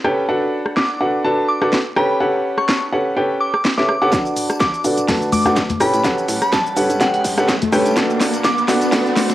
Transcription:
0.04 C#4 G4 A4 B4 G5, cross-stick
0.29 D4 F#4 A4 B4 F#5
0.66 cross-stick
0.77 D6, snare
1.01 D4 F#4 A4 B4 F#5
1.25 D4 F#4 A4 B4 A5
1.49 D6
1.62 D4 F#4 A4 B4 F#5, cross-stick
1.73 snare
1.96 C#4 G4 A4 B4 G5 B5, cross-stick
2.20 C#4 G4 A4 B4 F#5
2.58 C#6, cross-stick
2.68 C#6, snare
2.92 C#4 G4 A4 B4 F#5
3.16 C#4 G4 A4 B4 G5
3.40 D6
3.53 D6, cross-stick
3.65 snare
3.77 C#4 G4 A4 B4 E5 D6, snare
3.88 D6, cross-stick
4.01 C#4 G4 A4 B4 F#5 D6
4.12 D2 D4 F#4 A4, kick, snare, closed hi-hat, tambourine, riser, shaker
4.25 tambourine, shaker
4.37 D1, open hi-hat, shaker
4.50 cross-stick, closed hi-hat, tambourine, shaker
4.60 D2 D6, kick, snare, tambourine, shaker
4.74 tambourine, shaker
4.84 D1 D4 F#4 A4 B4 F#5, open hi-hat, shaker
4.97 D1, closed hi-hat, tambourine, shaker
5.08 D2 D4 F#4 A4 B4 A5, kick, snare, closed hi-hat, open hi-hat, tambourine, high conga, shaker
5.22 tambourine, shaker
5.32 D1 D6, open hi-hat, high conga, shaker
5.45 D4 F#4 A4 B4 F#5, cross-stick, snare, closed hi-hat, tambourine, high conga, shaker
5.56 D2, kick, snare, closed hi-hat, tambourine, shaker
5.69 closed hi-hat, tambourine, high conga, shaker
5.80 A2 C#4 G4 A4 B4 G5 B5, cross-stick, open hi-hat, shaker
5.94 A2, closed hi-hat, tambourine, shaker
6.04 A1 C#4 G4 A4 B4 F#5, kick, snare, closed hi-hat, tambourine, shaker
6.18 tambourine, shaker
6.28 A2, snare, open hi-hat, shaker
6.42 B5, cross-stick, closed hi-hat, tambourine, shaker
6.53 A1 A5, kick, snare, tambourine, shaker
6.66 tambourine, shaker
6.76 G2 C#4 G4 A4 B4 F#5, open hi-hat, shaker
6.90 G2, closed hi-hat, tambourine, shaker
7.01 G1 C#4 G4 A4 B4 F#5 G5, kick, snare, closed hi-hat, tambourine, shaker
7.14 F#5, closed hi-hat, tambourine, shaker
7.25 G2, kick, snare, open hi-hat, shaker
7.38 C#4 G4 A4 B4 F#5, cross-stick, snare, closed hi-hat, tambourine, shaker
7.49 G1, kick, snare, closed hi-hat, tambourine, shaker
7.62 closed hi-hat, tambourine, high conga, shaker
7.73 G2 C#4 G4 A4 B4 G5, cross-stick, open hi-hat, high conga, shaker
7.86 G2, closed hi-hat, tambourine, shaker
7.96 D2 D4 F#4 A4 B4 F#5, kick, snare, closed hi-hat, tambourine, shaker
8.10 tambourine, shaker
8.21 D1, snare, open hi-hat, shaker
8.34 closed hi-hat, tambourine, shaker
8.44 D2 D6, kick, snare, tambourine, shaker
8.58 tambourine, shaker
8.68 D1 D4 F#4 A4 B4 F#5, snare, open hi-hat, shaker
8.82 D1, closed hi-hat, tambourine, shaker
8.92 D2 D4 F#4 A4 B4 F#5, kick, snare, closed hi-hat, open hi-hat, tambourine, high conga, shaker
9.05 tambourine, shaker
9.16 snare, open hi-hat, high conga, shaker
9.29 snare, closed hi-hat, tambourine, high conga, shaker

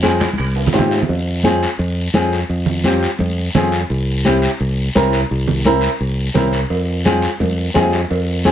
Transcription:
Already playing: F2
0.02 C4 F4 G#4, high conga, high timbale, short guiro
0.20 high conga, high timbale, short guiro
0.33 high conga
0.38 C2, high timbale, long guiro
0.56 high timbale
0.67 low conga
0.73 G#2 C4 F4 G4, low timbale, short guiro
0.79 low conga
0.91 low timbale, short guiro
1.02 low conga
1.09 F2, long guiro
1.43 C4 F4 G#4, high conga, short guiro
1.63 short guiro
1.79 F2, long guiro
2.14 F2 C4 F4 G#4, high conga, short guiro
2.33 short guiro
2.49 F2, long guiro
2.66 low conga
2.84 C4 F4 G4, high conga, short guiro
3.03 short guiro
3.19 F2, high conga, long guiro
3.55 F2 C4 F4 G#4, high conga, low conga, short guiro
3.72 short guiro
3.90 C2, long guiro
4.25 C4 E4 G4, high conga, short guiro
4.42 short guiro
4.60 C2, long guiro
4.95 C2 C4 E4 A#4, high conga, short guiro
5.13 short guiro
5.29 C2, long guiro
5.48 low conga
5.64 C4 E4 A#4, high conga, short guiro
5.81 short guiro
5.99 C2, long guiro
6.34 C2 C4 E4 A#4, high conga, low conga, short guiro
6.53 short guiro
6.70 F2, cowbell, long guiro
7.05 C4 F4 G#4, high conga, short guiro
7.22 short guiro
7.39 F2, cowbell, high conga, long guiro
7.74 F2 C4 F4 G#4, high conga, low timbale, short guiro
7.92 short guiro
8.10 F2, cowbell, long guiro
8.45 C4 F4 G#4, high conga, short guiro

